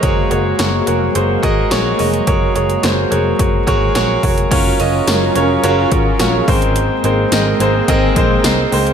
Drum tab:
CC |----------------|----------------|x---------------|----------------|
HH |x-x-x-x-x-x-x-ox|x-xxx-x-x-x-x-ox|x-x-x-x-x-x-x-ox|x-x-x-x-x-x-x-ox|
TB |----------------|----------------|----x-------x---|----x-------x---|
SD |----o-------o---|----o-------o---|----o-------o---|----o-------o---|
BD |o---------o-----|o-------o-o---o-|o---------o---o-|--------o-o-----|